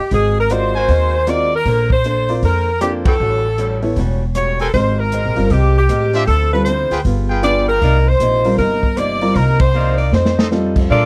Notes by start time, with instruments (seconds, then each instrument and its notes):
0.11 upright bass G#1, steel-string acoustic guitar G#3 C4 F#4 A#4, saxophone section G#4, kick, open hi-hat
0.40 saxophone section A#4
0.50 steel-string acoustic guitar G#3 C4 F#4 A#4, grand piano C4 F4 A#4 D5, saxophone section C5, closed hi-hat
0.75 trumpet section F#4 A#4 C5 G#5
0.88 upright bass D#2, steel-string acoustic guitar G#3 C4 F#4 A#4, kick, open hi-hat
1.27 steel-string acoustic guitar G#3 C4 F#4 A#4, grand piano C4 F4 A#4 D5, saxophone section D5, cross-stick, closed hi-hat
1.56 saxophone section A#4
1.65 upright bass A#1, steel-string acoustic guitar A#3 D4 A4 C5, kick, open hi-hat
1.90 saxophone section C5, kick
2.04 steel-string acoustic guitar A#3 D4 A4 C5, closed hi-hat
2.28 grand piano C4 F4 A#4 D5, open hi-hat
2.43 upright bass F2, steel-string acoustic guitar A#3 D4 A4 C5, saxophone section A#4, kick, open hi-hat
2.81 steel-string acoustic guitar A#3 D4 A4 C5, grand piano C4 F4 A#4 D5, saxophone section G4, cross-stick, closed hi-hat
3.05 trumpet section F#4 B4 C#5 G5, saxophone section A4, kick, ride
3.20 upright bass A1, steel-string acoustic guitar A2 G3 C#4 F#4
3.58 steel-string acoustic guitar A2 G3 C#4 F#4, closed hi-hat
3.83 grand piano B3 E4 A4 C#5, open hi-hat
3.96 upright bass E1, steel-string acoustic guitar A2 G3 C#4 F#4, kick, open hi-hat
4.35 steel-string acoustic guitar A2 G3 C#4 F#4, saxophone section C#5, cross-stick, closed hi-hat
4.59 trumpet section G4 A#4 C5 G#5, saxophone section A4, open hi-hat
4.74 upright bass G#1, steel-string acoustic guitar G#3 C4 G4 A#4, saxophone section C5, kick, open hi-hat
5.00 saxophone section A#4
5.12 steel-string acoustic guitar G#3 C4 G4 A#4, closed hi-hat
5.25 upright bass A#1
5.36 upright bass G1, grand piano G3 C4 F4 A#4, open hi-hat
5.50 upright bass C2, steel-string acoustic guitar G#3 C4 G4 A#4, saxophone section G4, kick, open hi-hat
5.78 saxophone section G4
5.89 upright bass A2, steel-string acoustic guitar G#3 C4 G4 A#4, cross-stick, closed hi-hat
6.13 trumpet section D4 F4 C5 E5, open hi-hat
6.27 upright bass D2, steel-string acoustic guitar D3 F3 C4 E4, saxophone section A4, kick, open hi-hat
6.53 grand piano G3 C4 F4 A4, saxophone section B4
6.65 steel-string acoustic guitar D3 F3 C4 E4, saxophone section C5, closed hi-hat
6.91 upright bass D2, trumpet section F4 G#4 B4 G5, open hi-hat
7.05 upright bass G1, steel-string acoustic guitar G3 B3 F4 G#4, kick, open hi-hat
7.29 trumpet section F4 G#4 B4 G5
7.43 steel-string acoustic guitar G3 B3 F4 G#4, grand piano B3 D4 F4 G#4, saxophone section D5, cross-stick, closed hi-hat
7.69 saxophone section A#4
7.81 upright bass C2, steel-string acoustic guitar C3 F3 A#3 D#4, trumpet section D#4 A#4 D5 F5, kick, open hi-hat
8.08 saxophone section C5
8.20 upright bass A#1, steel-string acoustic guitar C3 F3 A#3 D#4, closed hi-hat
8.44 grand piano G3 C4 F4 A#4, open hi-hat
8.58 upright bass G1, steel-string acoustic guitar C3 F3 A#3 D#4, saxophone section A#4, kick, open hi-hat
8.83 kick
8.96 steel-string acoustic guitar C3 F3 A#3 D#4, saxophone section D5, cross-stick, closed hi-hat
9.21 grand piano G3 C4 F4 A#4, open hi-hat
9.35 upright bass C2, steel-string acoustic guitar C3 F3 A#3 D#4, saxophone section A#4, kick, open hi-hat
9.60 saxophone section C5, kick, ride
9.74 steel-string acoustic guitar C3 F3 A#3 D#4, trumpet section D#4 A#4 D5 F5
9.98 saxophone section D5, open hi-hat
10.12 upright bass F2, steel-string acoustic guitar F3 C4 D#4 A4, saxophone section C5, snare
10.25 snare
10.38 trumpet section D#4 A4 C5 D#5, snare
10.51 steel-string acoustic guitar F3 C4 D#4 A4, grand piano G3 C4 F4 A4, snare
10.76 kick, crash
10.90 steel-string acoustic guitar A#2 A3 D4 F4, upright bass A#2, saxophone section A#3 F4 A4 D5, trumpet section D4 A4 A#4 F5, kick